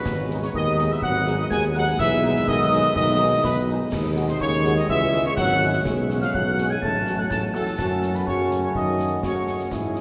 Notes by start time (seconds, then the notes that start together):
Already playing: B2 B4 B5
0.06 G#1 G#3 B3, concert bass drum, snare, crash
0.30 G#3 D#4 G#4, snare
0.42 C#3 C#5 C#6, snare
0.54 D#2 D#3 D#5 D#6, concert bass drum
0.78 G#3 D#4 G#4, snare
0.90 E3 E5 E6
1.02 G#1 F#3 F#5 F#6, concert bass drum
1.27 G#3 D#4 G#4, snare
1.38 D#3 D#5 D#6
1.50 D#2 G#3 G#5 G#6, concert bass drum, snare
1.75 F#3 G#3 D#4 G#4 F#5 F#6, snare
1.87 snare
1.99 B1 E3 G#3 B3 E5 E6, concert bass drum, snare
2.23 G#3 D#4 G#4, snare
2.36 snare
2.47 B1 D#3 D#5 D#6, concert bass drum
2.71 G#3 D#4 G#4, snare
2.95 B1 D#3 D#5 D#6, concert bass drum, snare
3.19 G#3 D#4 G#4
3.43 B1 B2 B4 B5, concert bass drum, snare
3.67 G#3 D#4 G#4
3.92 D#2 G#3 D#4, concert bass drum, snare, crash
4.16 G#3 F#4 G#4, snare
4.28 C3 C5 C6, snare
4.40 D#2 C#3 C#5 C#6, concert bass drum
4.64 G#3 F#4 G#4, snare
4.76 D#3 D#5 D#6
4.88 C#2 E3 C#4 E5 E6, concert bass drum
5.13 G#3 E4 G#4, snare
5.25 C#3 C#5 C#6
5.37 G#1 F#3 F#5 F#6, concert bass drum, snare
5.61 G#3 E4 G#4, snare
5.73 snare
5.85 B1 G#3, concert bass drum, snare
6.09 G#3 C#4 G#4, snare
6.21 F3 F5 F6, snare
6.33 B1 F#3 F#5 F#6, concert bass drum
6.58 G#3 C#4 G#4, snare
6.70 G#3 G#5 G#6
6.81 A1 F#3 A3 C#4 A5 A6, concert bass drum
7.06 A3 C#4 F#4, snare
7.18 F#3 F#5 F#6
7.30 A1 A3 A5 A6, concert bass drum, snare
7.54 A2 A3 C#4 F#4 A4 A5, snare
7.67 snare
7.78 F#2 F#3 A3 C#4 F#4, concert bass drum, snare, crash
8.03 snare
8.14 B2 B4 B5, snare
8.26 F#2 C#3 A3 C#4 F#4 C#5 C#6, concert bass drum
8.51 snare
8.63 C#3 C#5 C#6
8.75 F#2 D#3 D#5 D#6, concert bass drum
8.99 snare
9.23 F#2 C#3 A3 C#4 F#4 C#5 C#6, concert bass drum, snare
9.47 snare
9.59 snare
9.71 G#2 E3 G#3 C#4 E4 G#4 G#5, concert bass drum, snare
9.96 snare